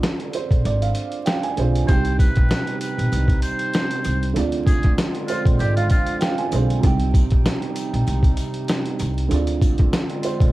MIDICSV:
0, 0, Header, 1, 6, 480
1, 0, Start_track
1, 0, Key_signature, -3, "minor"
1, 0, Tempo, 618557
1, 1463, Time_signature, 4, 2, 24, 8
1, 8164, End_track
2, 0, Start_track
2, 0, Title_t, "Muted trumpet"
2, 0, Program_c, 0, 59
2, 1456, Note_on_c, 0, 72, 110
2, 1675, Note_off_c, 0, 72, 0
2, 1703, Note_on_c, 0, 71, 93
2, 2154, Note_off_c, 0, 71, 0
2, 2183, Note_on_c, 0, 71, 78
2, 2634, Note_off_c, 0, 71, 0
2, 2661, Note_on_c, 0, 72, 93
2, 3351, Note_off_c, 0, 72, 0
2, 3622, Note_on_c, 0, 68, 91
2, 3838, Note_off_c, 0, 68, 0
2, 4101, Note_on_c, 0, 65, 93
2, 4220, Note_off_c, 0, 65, 0
2, 4342, Note_on_c, 0, 67, 83
2, 4460, Note_off_c, 0, 67, 0
2, 4473, Note_on_c, 0, 65, 77
2, 4572, Note_off_c, 0, 65, 0
2, 4586, Note_on_c, 0, 65, 80
2, 4801, Note_off_c, 0, 65, 0
2, 8164, End_track
3, 0, Start_track
3, 0, Title_t, "Upright piano"
3, 0, Program_c, 1, 0
3, 0, Control_c, 1, 64, 127
3, 0, Note_on_c, 1, 50, 77
3, 0, Note_on_c, 1, 60, 68
3, 0, Note_on_c, 1, 65, 71
3, 0, Note_on_c, 1, 68, 62
3, 0, Note_on_c, 1, 74, 84
3, 269, Note_on_c, 1, 72, 71
3, 490, Note_off_c, 1, 72, 0
3, 501, Note_off_c, 1, 74, 0
3, 513, Note_on_c, 1, 74, 76
3, 630, Note_off_c, 1, 74, 0
3, 637, Note_on_c, 1, 77, 68
3, 961, Note_off_c, 1, 77, 0
3, 975, Note_on_c, 1, 79, 73
3, 1100, Note_off_c, 1, 79, 0
3, 1114, Note_on_c, 1, 80, 68
3, 1181, Note_off_c, 1, 50, 0
3, 1187, Note_off_c, 1, 60, 0
3, 1193, Note_off_c, 1, 65, 0
3, 1198, Note_off_c, 1, 68, 0
3, 1214, Note_on_c, 1, 50, 58
3, 1220, Note_on_c, 1, 60, 58
3, 1226, Note_on_c, 1, 65, 52
3, 1231, Note_on_c, 1, 68, 52
3, 1236, Note_on_c, 1, 72, 67
3, 1439, Note_off_c, 1, 80, 0
3, 1441, Note_off_c, 1, 60, 0
3, 1442, Note_on_c, 1, 48, 75
3, 1453, Note_on_c, 1, 60, 70
3, 1459, Note_off_c, 1, 50, 0
3, 1464, Note_off_c, 1, 65, 0
3, 1464, Note_on_c, 1, 63, 64
3, 1467, Note_off_c, 1, 68, 0
3, 1470, Note_off_c, 1, 72, 0
3, 1473, Control_c, 1, 64, 0
3, 1476, Note_on_c, 1, 67, 72
3, 1487, Note_on_c, 1, 79, 90
3, 1588, Control_c, 1, 64, 127
3, 3342, Note_off_c, 1, 48, 0
3, 3347, Note_off_c, 1, 60, 0
3, 3352, Note_off_c, 1, 63, 0
3, 3358, Note_off_c, 1, 67, 0
3, 3363, Note_on_c, 1, 50, 78
3, 3364, Note_off_c, 1, 79, 0
3, 3374, Note_on_c, 1, 60, 70
3, 3385, Note_on_c, 1, 65, 73
3, 3394, Control_c, 1, 64, 0
3, 3396, Note_on_c, 1, 68, 66
3, 3407, Note_on_c, 1, 74, 84
3, 3544, Control_c, 1, 64, 127
3, 4111, Note_on_c, 1, 72, 73
3, 4330, Note_off_c, 1, 72, 0
3, 4343, Note_off_c, 1, 74, 0
3, 4355, Note_on_c, 1, 74, 78
3, 4471, Note_off_c, 1, 74, 0
3, 4481, Note_on_c, 1, 77, 70
3, 4803, Note_off_c, 1, 77, 0
3, 4816, Note_on_c, 1, 79, 77
3, 4941, Note_off_c, 1, 79, 0
3, 4955, Note_on_c, 1, 80, 72
3, 5022, Note_off_c, 1, 50, 0
3, 5027, Note_off_c, 1, 60, 0
3, 5033, Note_off_c, 1, 65, 0
3, 5038, Note_off_c, 1, 68, 0
3, 5054, Note_on_c, 1, 50, 64
3, 5060, Note_on_c, 1, 60, 62
3, 5066, Note_on_c, 1, 65, 54
3, 5071, Note_on_c, 1, 68, 55
3, 5077, Note_on_c, 1, 72, 68
3, 5279, Note_off_c, 1, 80, 0
3, 5280, Note_off_c, 1, 60, 0
3, 5281, Note_on_c, 1, 48, 76
3, 5292, Note_on_c, 1, 60, 72
3, 5299, Note_off_c, 1, 50, 0
3, 5304, Note_off_c, 1, 65, 0
3, 5304, Note_on_c, 1, 63, 69
3, 5307, Note_off_c, 1, 68, 0
3, 5310, Note_off_c, 1, 72, 0
3, 5314, Control_c, 1, 64, 0
3, 5314, Note_on_c, 1, 67, 72
3, 5325, Note_on_c, 1, 79, 93
3, 5435, Control_c, 1, 64, 127
3, 7181, Note_off_c, 1, 48, 0
3, 7186, Note_off_c, 1, 60, 0
3, 7192, Note_off_c, 1, 63, 0
3, 7197, Note_off_c, 1, 67, 0
3, 7203, Note_off_c, 1, 79, 0
3, 7203, Note_on_c, 1, 50, 77
3, 7214, Note_on_c, 1, 60, 72
3, 7225, Note_on_c, 1, 65, 75
3, 7232, Control_c, 1, 64, 0
3, 7237, Note_on_c, 1, 68, 64
3, 7248, Note_on_c, 1, 74, 81
3, 7366, Control_c, 1, 64, 127
3, 7951, Note_on_c, 1, 72, 73
3, 8164, Note_off_c, 1, 50, 0
3, 8164, Note_off_c, 1, 60, 0
3, 8164, Note_off_c, 1, 65, 0
3, 8164, Note_off_c, 1, 68, 0
3, 8164, Note_off_c, 1, 72, 0
3, 8164, Note_off_c, 1, 74, 0
3, 8164, End_track
4, 0, Start_track
4, 0, Title_t, "Analog synth pad"
4, 0, Program_c, 2, 89
4, 1468, Note_on_c, 2, 48, 83
4, 1468, Note_on_c, 2, 55, 74
4, 1468, Note_on_c, 2, 63, 83
4, 3366, Note_off_c, 2, 48, 0
4, 3366, Note_off_c, 2, 55, 0
4, 3366, Note_off_c, 2, 63, 0
4, 3387, Note_on_c, 2, 50, 79
4, 3387, Note_on_c, 2, 56, 76
4, 3387, Note_on_c, 2, 60, 83
4, 3387, Note_on_c, 2, 65, 91
4, 5286, Note_off_c, 2, 50, 0
4, 5286, Note_off_c, 2, 56, 0
4, 5286, Note_off_c, 2, 60, 0
4, 5286, Note_off_c, 2, 65, 0
4, 5303, Note_on_c, 2, 55, 67
4, 5303, Note_on_c, 2, 63, 90
4, 5304, Note_on_c, 2, 48, 83
4, 7204, Note_off_c, 2, 48, 0
4, 7204, Note_off_c, 2, 55, 0
4, 7204, Note_off_c, 2, 63, 0
4, 7221, Note_on_c, 2, 65, 83
4, 7222, Note_on_c, 2, 50, 85
4, 7222, Note_on_c, 2, 56, 84
4, 7222, Note_on_c, 2, 60, 73
4, 8164, Note_off_c, 2, 50, 0
4, 8164, Note_off_c, 2, 56, 0
4, 8164, Note_off_c, 2, 60, 0
4, 8164, Note_off_c, 2, 65, 0
4, 8164, End_track
5, 0, Start_track
5, 0, Title_t, "Upright bass"
5, 0, Program_c, 3, 32
5, 394, Note_on_c, 3, 34, 83
5, 483, Note_off_c, 3, 34, 0
5, 505, Note_on_c, 3, 32, 96
5, 699, Note_off_c, 3, 32, 0
5, 1225, Note_on_c, 3, 35, 95
5, 1419, Note_off_c, 3, 35, 0
5, 1465, Note_on_c, 3, 36, 109
5, 1765, Note_off_c, 3, 36, 0
5, 1840, Note_on_c, 3, 34, 92
5, 1926, Note_off_c, 3, 34, 0
5, 2315, Note_on_c, 3, 34, 94
5, 2403, Note_off_c, 3, 34, 0
5, 2424, Note_on_c, 3, 36, 97
5, 2618, Note_off_c, 3, 36, 0
5, 3144, Note_on_c, 3, 36, 97
5, 3338, Note_off_c, 3, 36, 0
5, 3385, Note_on_c, 3, 38, 108
5, 3685, Note_off_c, 3, 38, 0
5, 3760, Note_on_c, 3, 38, 94
5, 3846, Note_off_c, 3, 38, 0
5, 4235, Note_on_c, 3, 34, 87
5, 4323, Note_off_c, 3, 34, 0
5, 4345, Note_on_c, 3, 32, 96
5, 4539, Note_off_c, 3, 32, 0
5, 5065, Note_on_c, 3, 35, 99
5, 5259, Note_off_c, 3, 35, 0
5, 5306, Note_on_c, 3, 36, 109
5, 5605, Note_off_c, 3, 36, 0
5, 5680, Note_on_c, 3, 34, 91
5, 5766, Note_off_c, 3, 34, 0
5, 6157, Note_on_c, 3, 34, 98
5, 6244, Note_off_c, 3, 34, 0
5, 6266, Note_on_c, 3, 36, 101
5, 6459, Note_off_c, 3, 36, 0
5, 6986, Note_on_c, 3, 36, 100
5, 7179, Note_off_c, 3, 36, 0
5, 7225, Note_on_c, 3, 38, 108
5, 7525, Note_off_c, 3, 38, 0
5, 7600, Note_on_c, 3, 38, 95
5, 7686, Note_off_c, 3, 38, 0
5, 8075, Note_on_c, 3, 34, 87
5, 8163, Note_off_c, 3, 34, 0
5, 8164, End_track
6, 0, Start_track
6, 0, Title_t, "Drums"
6, 26, Note_on_c, 9, 38, 115
6, 28, Note_on_c, 9, 42, 93
6, 103, Note_off_c, 9, 38, 0
6, 105, Note_off_c, 9, 42, 0
6, 154, Note_on_c, 9, 42, 49
6, 231, Note_off_c, 9, 42, 0
6, 259, Note_on_c, 9, 42, 90
6, 336, Note_off_c, 9, 42, 0
6, 393, Note_on_c, 9, 36, 103
6, 401, Note_on_c, 9, 42, 58
6, 470, Note_off_c, 9, 36, 0
6, 478, Note_off_c, 9, 42, 0
6, 507, Note_on_c, 9, 42, 77
6, 584, Note_off_c, 9, 42, 0
6, 637, Note_on_c, 9, 42, 54
6, 714, Note_off_c, 9, 42, 0
6, 735, Note_on_c, 9, 42, 85
6, 813, Note_off_c, 9, 42, 0
6, 867, Note_on_c, 9, 42, 52
6, 944, Note_off_c, 9, 42, 0
6, 978, Note_on_c, 9, 42, 79
6, 988, Note_on_c, 9, 38, 114
6, 1056, Note_off_c, 9, 42, 0
6, 1065, Note_off_c, 9, 38, 0
6, 1113, Note_on_c, 9, 42, 58
6, 1190, Note_off_c, 9, 42, 0
6, 1220, Note_on_c, 9, 42, 78
6, 1298, Note_off_c, 9, 42, 0
6, 1361, Note_on_c, 9, 42, 55
6, 1439, Note_off_c, 9, 42, 0
6, 1460, Note_on_c, 9, 83, 61
6, 1463, Note_on_c, 9, 42, 84
6, 1464, Note_on_c, 9, 36, 108
6, 1538, Note_off_c, 9, 83, 0
6, 1541, Note_off_c, 9, 42, 0
6, 1542, Note_off_c, 9, 36, 0
6, 1588, Note_on_c, 9, 42, 59
6, 1666, Note_off_c, 9, 42, 0
6, 1700, Note_on_c, 9, 36, 99
6, 1705, Note_on_c, 9, 42, 75
6, 1709, Note_on_c, 9, 83, 75
6, 1778, Note_off_c, 9, 36, 0
6, 1783, Note_off_c, 9, 42, 0
6, 1787, Note_off_c, 9, 83, 0
6, 1828, Note_on_c, 9, 42, 52
6, 1838, Note_on_c, 9, 36, 90
6, 1905, Note_off_c, 9, 42, 0
6, 1916, Note_off_c, 9, 36, 0
6, 1946, Note_on_c, 9, 38, 114
6, 1947, Note_on_c, 9, 83, 53
6, 1948, Note_on_c, 9, 42, 96
6, 2023, Note_off_c, 9, 38, 0
6, 2025, Note_off_c, 9, 42, 0
6, 2025, Note_off_c, 9, 83, 0
6, 2074, Note_on_c, 9, 42, 49
6, 2151, Note_off_c, 9, 42, 0
6, 2179, Note_on_c, 9, 42, 95
6, 2184, Note_on_c, 9, 83, 74
6, 2257, Note_off_c, 9, 42, 0
6, 2261, Note_off_c, 9, 83, 0
6, 2321, Note_on_c, 9, 42, 61
6, 2399, Note_off_c, 9, 42, 0
6, 2419, Note_on_c, 9, 83, 48
6, 2428, Note_on_c, 9, 42, 80
6, 2497, Note_off_c, 9, 83, 0
6, 2505, Note_off_c, 9, 42, 0
6, 2545, Note_on_c, 9, 36, 96
6, 2557, Note_on_c, 9, 42, 55
6, 2622, Note_off_c, 9, 36, 0
6, 2635, Note_off_c, 9, 42, 0
6, 2655, Note_on_c, 9, 42, 87
6, 2668, Note_on_c, 9, 83, 66
6, 2733, Note_off_c, 9, 42, 0
6, 2745, Note_off_c, 9, 83, 0
6, 2786, Note_on_c, 9, 42, 53
6, 2864, Note_off_c, 9, 42, 0
6, 2898, Note_on_c, 9, 42, 82
6, 2903, Note_on_c, 9, 83, 54
6, 2908, Note_on_c, 9, 38, 116
6, 2976, Note_off_c, 9, 42, 0
6, 2981, Note_off_c, 9, 83, 0
6, 2985, Note_off_c, 9, 38, 0
6, 3031, Note_on_c, 9, 42, 59
6, 3109, Note_off_c, 9, 42, 0
6, 3136, Note_on_c, 9, 83, 69
6, 3140, Note_on_c, 9, 42, 81
6, 3213, Note_off_c, 9, 83, 0
6, 3218, Note_off_c, 9, 42, 0
6, 3281, Note_on_c, 9, 42, 57
6, 3359, Note_off_c, 9, 42, 0
6, 3381, Note_on_c, 9, 83, 60
6, 3384, Note_on_c, 9, 42, 86
6, 3459, Note_off_c, 9, 83, 0
6, 3461, Note_off_c, 9, 42, 0
6, 3509, Note_on_c, 9, 42, 59
6, 3587, Note_off_c, 9, 42, 0
6, 3621, Note_on_c, 9, 36, 99
6, 3627, Note_on_c, 9, 42, 76
6, 3630, Note_on_c, 9, 83, 75
6, 3698, Note_off_c, 9, 36, 0
6, 3704, Note_off_c, 9, 42, 0
6, 3708, Note_off_c, 9, 83, 0
6, 3749, Note_on_c, 9, 42, 54
6, 3759, Note_on_c, 9, 36, 92
6, 3826, Note_off_c, 9, 42, 0
6, 3836, Note_off_c, 9, 36, 0
6, 3867, Note_on_c, 9, 38, 115
6, 3868, Note_on_c, 9, 83, 53
6, 3869, Note_on_c, 9, 42, 98
6, 3944, Note_off_c, 9, 38, 0
6, 3946, Note_off_c, 9, 42, 0
6, 3946, Note_off_c, 9, 83, 0
6, 3995, Note_on_c, 9, 42, 50
6, 4073, Note_off_c, 9, 42, 0
6, 4100, Note_on_c, 9, 42, 92
6, 4104, Note_on_c, 9, 83, 73
6, 4178, Note_off_c, 9, 42, 0
6, 4182, Note_off_c, 9, 83, 0
6, 4234, Note_on_c, 9, 36, 104
6, 4242, Note_on_c, 9, 42, 62
6, 4311, Note_off_c, 9, 36, 0
6, 4319, Note_off_c, 9, 42, 0
6, 4339, Note_on_c, 9, 83, 50
6, 4348, Note_on_c, 9, 42, 79
6, 4417, Note_off_c, 9, 83, 0
6, 4426, Note_off_c, 9, 42, 0
6, 4477, Note_on_c, 9, 42, 55
6, 4555, Note_off_c, 9, 42, 0
6, 4576, Note_on_c, 9, 42, 86
6, 4584, Note_on_c, 9, 36, 96
6, 4588, Note_on_c, 9, 83, 66
6, 4654, Note_off_c, 9, 42, 0
6, 4662, Note_off_c, 9, 36, 0
6, 4666, Note_off_c, 9, 83, 0
6, 4707, Note_on_c, 9, 42, 55
6, 4785, Note_off_c, 9, 42, 0
6, 4818, Note_on_c, 9, 42, 82
6, 4823, Note_on_c, 9, 83, 54
6, 4828, Note_on_c, 9, 38, 118
6, 4896, Note_off_c, 9, 42, 0
6, 4901, Note_off_c, 9, 83, 0
6, 4905, Note_off_c, 9, 38, 0
6, 4952, Note_on_c, 9, 42, 60
6, 5030, Note_off_c, 9, 42, 0
6, 5056, Note_on_c, 9, 83, 69
6, 5060, Note_on_c, 9, 42, 81
6, 5134, Note_off_c, 9, 83, 0
6, 5138, Note_off_c, 9, 42, 0
6, 5202, Note_on_c, 9, 42, 55
6, 5279, Note_off_c, 9, 42, 0
6, 5302, Note_on_c, 9, 83, 59
6, 5303, Note_on_c, 9, 42, 86
6, 5304, Note_on_c, 9, 36, 109
6, 5379, Note_off_c, 9, 83, 0
6, 5381, Note_off_c, 9, 42, 0
6, 5382, Note_off_c, 9, 36, 0
6, 5429, Note_on_c, 9, 42, 61
6, 5506, Note_off_c, 9, 42, 0
6, 5541, Note_on_c, 9, 36, 98
6, 5546, Note_on_c, 9, 42, 76
6, 5551, Note_on_c, 9, 83, 73
6, 5618, Note_off_c, 9, 36, 0
6, 5623, Note_off_c, 9, 42, 0
6, 5628, Note_off_c, 9, 83, 0
6, 5669, Note_on_c, 9, 42, 53
6, 5679, Note_on_c, 9, 36, 92
6, 5746, Note_off_c, 9, 42, 0
6, 5756, Note_off_c, 9, 36, 0
6, 5786, Note_on_c, 9, 38, 115
6, 5788, Note_on_c, 9, 42, 98
6, 5788, Note_on_c, 9, 83, 54
6, 5864, Note_off_c, 9, 38, 0
6, 5866, Note_off_c, 9, 42, 0
6, 5866, Note_off_c, 9, 83, 0
6, 5914, Note_on_c, 9, 42, 50
6, 5992, Note_off_c, 9, 42, 0
6, 6019, Note_on_c, 9, 42, 92
6, 6024, Note_on_c, 9, 83, 73
6, 6097, Note_off_c, 9, 42, 0
6, 6102, Note_off_c, 9, 83, 0
6, 6161, Note_on_c, 9, 42, 62
6, 6239, Note_off_c, 9, 42, 0
6, 6259, Note_on_c, 9, 83, 48
6, 6267, Note_on_c, 9, 42, 77
6, 6336, Note_off_c, 9, 83, 0
6, 6345, Note_off_c, 9, 42, 0
6, 6385, Note_on_c, 9, 36, 94
6, 6396, Note_on_c, 9, 42, 55
6, 6462, Note_off_c, 9, 36, 0
6, 6474, Note_off_c, 9, 42, 0
6, 6495, Note_on_c, 9, 42, 84
6, 6508, Note_on_c, 9, 83, 66
6, 6573, Note_off_c, 9, 42, 0
6, 6585, Note_off_c, 9, 83, 0
6, 6626, Note_on_c, 9, 42, 54
6, 6704, Note_off_c, 9, 42, 0
6, 6738, Note_on_c, 9, 42, 84
6, 6743, Note_on_c, 9, 83, 52
6, 6747, Note_on_c, 9, 38, 118
6, 6815, Note_off_c, 9, 42, 0
6, 6821, Note_off_c, 9, 83, 0
6, 6825, Note_off_c, 9, 38, 0
6, 6872, Note_on_c, 9, 42, 61
6, 6950, Note_off_c, 9, 42, 0
6, 6976, Note_on_c, 9, 83, 70
6, 6981, Note_on_c, 9, 42, 83
6, 7054, Note_off_c, 9, 83, 0
6, 7058, Note_off_c, 9, 42, 0
6, 7122, Note_on_c, 9, 42, 58
6, 7200, Note_off_c, 9, 42, 0
6, 7221, Note_on_c, 9, 83, 58
6, 7224, Note_on_c, 9, 42, 84
6, 7298, Note_off_c, 9, 83, 0
6, 7301, Note_off_c, 9, 42, 0
6, 7348, Note_on_c, 9, 42, 58
6, 7426, Note_off_c, 9, 42, 0
6, 7461, Note_on_c, 9, 36, 97
6, 7466, Note_on_c, 9, 42, 76
6, 7470, Note_on_c, 9, 83, 72
6, 7538, Note_off_c, 9, 36, 0
6, 7543, Note_off_c, 9, 42, 0
6, 7547, Note_off_c, 9, 83, 0
6, 7589, Note_on_c, 9, 42, 54
6, 7599, Note_on_c, 9, 36, 90
6, 7666, Note_off_c, 9, 42, 0
6, 7676, Note_off_c, 9, 36, 0
6, 7706, Note_on_c, 9, 38, 112
6, 7707, Note_on_c, 9, 83, 52
6, 7709, Note_on_c, 9, 42, 98
6, 7784, Note_off_c, 9, 38, 0
6, 7785, Note_off_c, 9, 83, 0
6, 7786, Note_off_c, 9, 42, 0
6, 7835, Note_on_c, 9, 42, 50
6, 7912, Note_off_c, 9, 42, 0
6, 7940, Note_on_c, 9, 42, 92
6, 7943, Note_on_c, 9, 83, 75
6, 8018, Note_off_c, 9, 42, 0
6, 8021, Note_off_c, 9, 83, 0
6, 8074, Note_on_c, 9, 36, 104
6, 8082, Note_on_c, 9, 42, 63
6, 8151, Note_off_c, 9, 36, 0
6, 8160, Note_off_c, 9, 42, 0
6, 8164, End_track
0, 0, End_of_file